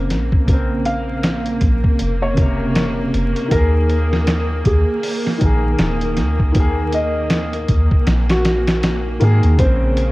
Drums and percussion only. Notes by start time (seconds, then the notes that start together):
0.10 snare, closed hi-hat
0.32 kick
0.48 kick, closed hi-hat
0.86 closed hi-hat
1.23 snare, closed hi-hat
1.46 closed hi-hat
1.61 kick, closed hi-hat
1.84 kick
1.99 closed hi-hat
2.37 kick, closed hi-hat
2.75 snare, closed hi-hat
3.14 closed hi-hat
3.36 closed hi-hat
3.51 kick, closed hi-hat
3.90 closed hi-hat
4.13 snare
4.27 snare, closed hi-hat
4.65 kick, closed hi-hat
5.03 open hi-hat
5.27 snare
5.41 kick, closed hi-hat
5.79 snare, closed hi-hat
6.01 closed hi-hat
6.17 snare, closed hi-hat
6.40 kick
6.55 kick, closed hi-hat
6.93 closed hi-hat
7.30 snare, closed hi-hat
7.53 closed hi-hat
7.68 kick, closed hi-hat
7.91 kick
8.07 snare, closed hi-hat
8.29 snare, closed hi-hat
8.45 snare, closed hi-hat
8.67 snare, closed hi-hat
8.83 snare, closed hi-hat
9.21 closed hi-hat
9.43 closed hi-hat
9.59 kick, closed hi-hat
9.97 closed hi-hat